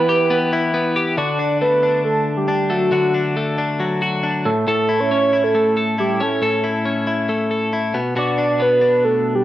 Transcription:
Already playing: E3 B3 E4 B4
0.09 G4
0.30 B3
0.53 E4
0.74 B3
0.96 G4
1.17 D3 F#4 D5
1.39 D4
1.61 A3 B4
1.83 D4
2.05 A4
2.37 G4
2.48 D4
2.70 A3 F#4
2.92 D3 F#4
3.14 D4
3.37 A3
3.58 D4
3.80 F#3
4.02 F#4
4.23 D4
4.45 A2 A4
4.67 A2 A4
4.89 E4
5.00 C#5
5.11 C#4 C#5
5.33 E4
5.44 A4
5.54 A3 A4
5.77 A4
5.98 E4 G4
6.20 C#4 A4
6.42 A2 A4
6.64 E4
6.85 C#4
7.07 E4
7.29 A3
7.51 A4
7.73 E4
7.94 B2
8.16 B2 F#4 D5
8.38 D4
8.60 B3 B4
8.81 D4
9.04 A4
9.35 G4

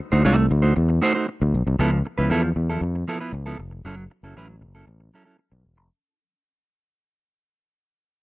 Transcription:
0.12 D2 A3 D#4 F#4 C5
0.25 C2 A3 D#4 F#4 D5
0.38 muted clean electric guitar stroke
0.51 D2, muted clean electric guitar stroke
0.62 A3 D#4 F#4 C5
0.76 E2, muted clean electric guitar stroke
0.89 muted clean electric guitar stroke
1.02 A3 D#4 F#4 C5
1.15 A3 F#4 C5
1.28 muted clean electric guitar stroke
1.42 D2, muted clean electric guitar stroke
1.54 B1
1.67 C2, muted clean electric guitar stroke
1.79 C#2 F3 B3 E4 A4
1.92 muted clean electric guitar stroke
2.05 muted clean electric guitar stroke
2.18 C#2 F3 B3 E4 B4
2.30 E2 F3 B3 E4 A4
2.44 muted clean electric guitar stroke
2.56 E2, muted clean electric guitar stroke
2.70 F3 B3 E4 A4
2.81 F2
2.95 muted clean electric guitar stroke
3.08 F3 B3 E4 A4
3.20 F3 B3 E4 B4
3.33 C#2, muted clean electric guitar stroke
3.46 F3 B3 E4 A4
3.59 F1
3.71 muted clean electric guitar stroke
3.85 F#1 F#3 C#4 E4 A4
3.98 muted clean electric guitar stroke
4.10 muted clean electric guitar stroke
4.23 F#1 F#3 C#4 E4 A4
4.36 A1 F#3 C#4 E4 B4
4.49 muted clean electric guitar stroke
4.61 F#1, muted clean electric guitar stroke
4.75 F#3 C#4 E4 A4
4.87 A1
5.00 muted clean electric guitar stroke
5.14 F#3 C#4 E4 A4
5.25 F#3 C#4 E4 A4
5.39 muted clean electric guitar stroke
5.52 B1, muted clean electric guitar stroke
5.64 E1
5.77 F1, muted clean electric guitar stroke

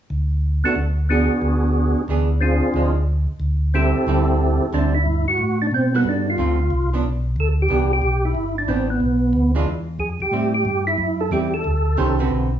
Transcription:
0.10 D2
0.64 A3 B3 D4 F#4 A4
0.76 D2
1.09 E3 B3 D4 F#4 G#4
1.42 D2
2.08 D2 E3 B3 D4 G#4
2.41 C4 D4 F4 G#4
2.74 D2 F3 G#3 D4
3.40 D2
3.74 D3 G3 C4 E4 G4 A4
4.07 D2 D3 G3 C4 E4
4.73 D2 D3 G3 C4 D4 E4
4.95 E4
5.06 G2
5.28 F#4
5.38 A2
5.62 D4
5.71 B2 C4
5.94 G3 B3 F#4 A4
6.04 G2
6.09 D4
6.30 F4
6.38 D2 D3 A3 C4 F4
6.70 C2
6.93 F3 B3 D4
7.03 B1
7.36 D2 A4
7.62 G4
7.69 C2 E3 B3 D4
7.93 G4
8.02 B1
8.25 E4
8.35 G1
8.58 D4
8.68 A1 E3 B3 C4 D4
8.90 B3
9.00 B1
9.33 D2
9.55 E3 G#3 D4 F4
9.66 E2
9.99 F2 G#4
10.20 F2 G4
10.31 A2 G3 C4 E4
10.54 G4
10.65 G2
10.87 E4
10.98 F#2
11.21 A4
11.31 E2 G3 C4 E4 G4
11.54 A4
11.64 D2
11.97 C2 D#3 C#4 G4 C5
12.19 D3 C4 F#4 B4
12.30 B1

